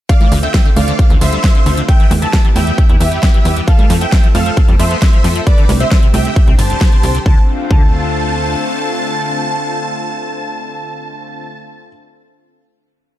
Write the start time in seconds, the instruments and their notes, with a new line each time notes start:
0.09 acid bass D3, analog synth pad D3 A3 C4 F4, supersaw synth D5 F5, grand piano F5, kick, closed hi-hat
0.21 analog synth pad D3 A3 C4 F4, acid bass E3, closed hi-hat, high conga
0.32 analog synth bass D2, analog synth pad D3 A3 C4 F4, acid bass D3, open hi-hat
0.43 acid bass D3, supersaw synth E5 G5, grand piano G5, closed hi-hat
0.54 analog synth pad D3 A3 C4 F4, acid bass D4, kick, snare, closed hi-hat
0.65 acid bass D3, closed hi-hat
0.76 analog synth bass D2, acid bass D3, analog synth pad D3 A3 C4 F4, supersaw synth D5 F5, grand piano F5, open hi-hat, high conga
0.88 acid bass D3, closed hi-hat
0.99 acid bass A2, analog synth pad D3 A3 C4 F4, kick, closed hi-hat
1.10 analog synth bass D2, acid bass E3, closed hi-hat
1.21 analog synth bass D2, analog synth pad D3 A3 C4 F4, acid bass F3, supersaw synth C5 E5, grand piano E5, open hi-hat
1.32 acid bass G3, closed hi-hat
1.44 analog synth pad D3 A3 C4 F4, acid bass E3, kick, snare, closed hi-hat
1.55 analog synth pad D3 A3 C4 F4, acid bass D3, closed hi-hat
1.66 analog synth bass D2, analog synth pad D3 A3 C4 F4, acid bass D3, open hi-hat
1.77 acid bass D3, closed hi-hat
1.89 acid bass B2, analog synth pad E3 G3 B3 G4, supersaw synth E5 G5, grand piano G5, kick, closed hi-hat
2.00 analog synth pad E3 G3 B3 G4, acid bass E3, closed hi-hat
2.11 analog synth bass E2, acid bass E3, analog synth pad E3 G3 B3 G4, open hi-hat, high conga
2.22 acid bass D3, supersaw synth E5 A5, grand piano A5, closed hi-hat
2.33 analog synth pad E3 G3 B3 G4, acid bass E3, kick, snare, closed hi-hat
2.44 acid bass E3, closed hi-hat
2.56 analog synth bass E2, acid bass E3, analog synth pad E3 G3 B3 G4, supersaw synth E5 G5, grand piano G5, open hi-hat, high conga
2.67 acid bass E2, closed hi-hat
2.78 acid bass B2, analog synth pad E3 G3 B3 G4, kick, closed hi-hat
2.89 analog synth bass E2, acid bass E4, closed hi-hat
3.00 analog synth bass E2, analog synth pad E3 G3 B3 G4, acid bass E3, supersaw synth G4 E5, grand piano E5, open hi-hat
3.12 acid bass E2, closed hi-hat
3.23 acid bass E3, analog synth pad E3 G3 B3 G4, kick, snare, closed hi-hat
3.34 analog synth pad E3 G3 B3 G4, acid bass E3, closed hi-hat
3.45 analog synth bass E2, acid bass E3, analog synth pad E3 G3 B3 G4, open hi-hat
3.56 acid bass E2, closed hi-hat
3.67 analog synth pad F3 A3 C4 A4, acid bass F3, supersaw synth A4 F5, grand piano F5, kick, closed hi-hat
3.79 analog synth pad F3 A3 C4 A4, acid bass G3, closed hi-hat, high conga
3.90 analog synth bass F2, acid bass F3, analog synth pad F3 A3 C4 A4, open hi-hat
4.01 acid bass F3, supersaw synth E5 G5, grand piano G5, closed hi-hat
4.12 analog synth pad F3 A3 C4 A4, acid bass F4, kick, snare, closed hi-hat
4.23 acid bass F3, closed hi-hat
4.35 analog synth bass F2, acid bass F3, analog synth pad F3 A3 C4 A4, supersaw synth A4 F5, grand piano F5, open hi-hat, high conga
4.46 acid bass F3, closed hi-hat
4.57 acid bass C3, analog synth pad F3 A3 C4 A4, kick, closed hi-hat
4.68 analog synth bass F2, acid bass G3, closed hi-hat
4.79 analog synth bass F2, analog synth pad F3 A3 C4 A4, acid bass A3, supersaw synth C5 E5, grand piano E5, open hi-hat
4.91 acid bass B3, closed hi-hat
5.02 analog synth pad F3 A3 C4 A4, acid bass G3, kick, snare, closed hi-hat
5.13 acid bass F3, analog synth pad F3 A3 C4 A4, closed hi-hat
5.24 analog synth bass F2, analog synth pad F3 A3 C4 A4, acid bass F3, open hi-hat
5.35 acid bass F3, closed hi-hat
5.47 acid bass G2, analog synth pad D3 G3 C4 G4, supersaw synth B4 D5, grand piano D5, kick, closed hi-hat
5.58 acid bass D3, analog synth pad D3 G3 C4 G4, closed hi-hat
5.69 analog synth bass C2, acid bass C3, analog synth pad D3 G3 C4 G4, open hi-hat, high conga
5.80 acid bass B2, supersaw synth C5 E5, grand piano E5, closed hi-hat
5.91 acid bass D3, analog synth pad D3 G3 C4 G4, kick, snare, closed hi-hat
6.03 acid bass C3, closed hi-hat
6.14 analog synth bass C2, acid bass C3, analog synth pad D3 G3 C4 G4, supersaw synth E5 G5, grand piano G5, open hi-hat, high conga
6.25 acid bass C2, closed hi-hat
6.36 acid bass G2, analog synth pad D3 G3 C4 G4, kick, closed hi-hat
6.47 analog synth bass C2, acid bass C4, closed hi-hat
6.59 analog synth bass G1, acid bass C3, analog synth pad D3 G3 C4 G4, supersaw synth C5 A5, grand piano A5, open hi-hat
6.70 acid bass C2, closed hi-hat
6.81 acid bass D3, analog synth pad D3 G3 C4 G4, kick, snare, closed hi-hat
6.92 acid bass C3, analog synth pad D3 G3 C4 G4, closed hi-hat
7.03 analog synth bass C2, acid bass C3, analog synth pad D3 G3 C4 G4, open hi-hat
7.15 acid bass C2, closed hi-hat
7.26 analog synth bass D2, acid bass D3, analog synth pad D3 A3 C4 F4, grand piano A5, supersaw synth A5, kick
7.71 analog synth bass D2, acid bass D3, grand piano A5, supersaw synth A5, kick